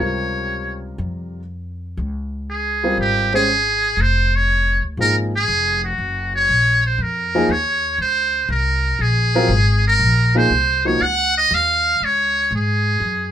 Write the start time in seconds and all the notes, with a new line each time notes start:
Already playing: C#2 G3
0.00 C3 F4 A#4 C#5
0.98 F2
1.97 C#2
2.50 G#4
2.83 G3 C4 F4 A#4
2.98 G#1 G4
3.33 G#3 C#4 G4 G#4 C5
3.97 F1
4.01 C5
4.36 C#5
4.83 D2
4.97 G#1 F3 A#3 D#4 G#4 A#4
5.36 G#4
5.48 F1
5.85 F#4
5.98 F#1
6.36 C#5
6.49 A#1
6.86 C5
6.98 F2 A#4
7.35 F3 A#3 D#4 G#4
7.49 D#2 C#5
7.98 C#2 C5
8.49 C2 A#4
8.99 A#1 G#4
9.35 F#3 C4 F4 A#4
9.49 G#1
9.87 A#4
9.99 A#1
10.35 F3 A#3 D#4 G#4 C5
10.50 C2
10.85 F3 A#3 D#4 F#4 C#5
11.00 C#2 F#5
11.38 D#5
11.51 D#2 F5
12.00 C#2 C#5
12.51 G#2
12.55 G#4
13.00 F#2